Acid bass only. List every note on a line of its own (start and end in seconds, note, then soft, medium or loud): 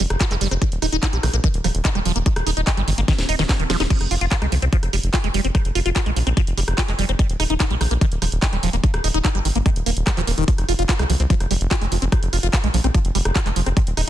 0.21 0.25 F4 loud
0.31 0.35 G#3 medium
0.41 0.48 G3 medium
0.51 0.54 C4 medium
0.62 0.64 D#3 medium
0.82 0.87 D#4 medium
0.92 0.97 D#4 medium
1.03 1.07 D#4 loud
1.13 1.17 G3 medium
1.23 1.26 D#3 medium
1.34 1.36 A#3 medium
1.44 1.48 D#3 medium
1.64 1.67 F3 medium
1.85 1.89 D#4 loud
1.95 2.00 G3 medium
2.05 2.12 F3 medium
2.16 2.18 A#3 medium
2.26 2.29 D#3 medium
2.47 2.51 D#4 medium
2.57 2.61 D#4 medium
2.67 2.72 D#4 loud
2.77 2.82 G3 medium
2.88 2.90 D#3 medium
2.98 3.01 A#3 medium
3.08 3.13 D#3 medium
3.29 3.35 D#4 medium
3.39 3.43 D#3 loud
3.60 3.64 D#3 medium
3.70 3.77 F3 loud
3.80 3.83 D#4 loud
3.90 3.93 F3 medium
4.11 4.15 F4 medium
4.21 4.26 F4 medium
4.32 4.36 F4 loud
4.42 4.46 G#3 medium
4.52 4.55 F3 medium
4.62 4.65 C4 medium
4.73 4.77 F3 medium
4.93 4.96 G3 medium
5.14 5.18 F4 loud
5.24 5.28 G#3 medium
5.34 5.41 G3 medium
5.45 5.47 C4 medium
5.55 5.57 F3 medium
5.75 5.80 F4 medium
5.86 5.90 F4 medium
5.96 6.00 F4 loud
6.06 6.11 G#3 medium
6.16 6.19 F3 medium
6.27 6.29 C4 medium
6.37 6.41 F3 medium
6.57 6.60 G3 medium
6.78 6.83 F4 loud
6.88 6.93 G#3 medium
6.99 7.05 G3 medium
7.09 7.12 C4 medium
7.19 7.22 D#3 medium
7.40 7.44 D#4 medium
7.50 7.54 D#4 medium
7.60 7.65 D#4 loud
7.71 7.75 G3 medium
7.81 7.83 D#3 medium
7.91 7.94 A#3 medium
8.01 8.06 D#3 medium
8.22 8.25 F3 medium
8.42 8.47 D#4 loud
8.53 8.57 G3 medium
8.63 8.70 F3 medium
8.73 8.76 A#3 medium
8.84 8.86 D#3 medium
9.04 9.09 D#4 medium
9.14 9.19 D#4 medium
9.25 9.29 D#4 loud
9.35 9.39 G3 medium
9.45 9.48 D#3 medium
9.55 9.58 A#3 medium
9.66 9.70 D#3 medium
9.86 9.91 A#3 medium
10.07 10.11 G3 medium
10.17 10.22 F3 loud
10.27 10.32 A#3 medium
10.38 10.44 D#3 medium
10.48 10.51 F3 medium
10.69 10.73 F4 medium
10.79 10.83 F4 medium
10.89 10.93 F4 loud
10.99 11.04 G#3 medium
11.10 11.12 F3 medium
11.20 11.23 C4 medium
11.30 11.35 F3 medium
11.51 11.53 G3 medium
11.71 11.76 F4 loud
11.81 11.86 G#3 medium
11.92 11.96 F3 medium
12.02 12.05 C4 medium
12.12 12.15 F3 medium
12.33 12.37 F4 medium
12.43 12.48 F4 medium
12.53 12.58 F4 loud
12.64 12.68 G#3 medium
12.74 12.77 F3 medium
12.84 12.87 C4 medium
12.95 12.99 F3 medium
13.15 13.18 G3 medium
13.36 13.40 F4 loud
13.46 13.50 G#3 medium
13.56 13.61 F3 medium
13.66 13.69 C4 medium
13.77 13.79 D#3 medium
13.97 14.02 D#4 medium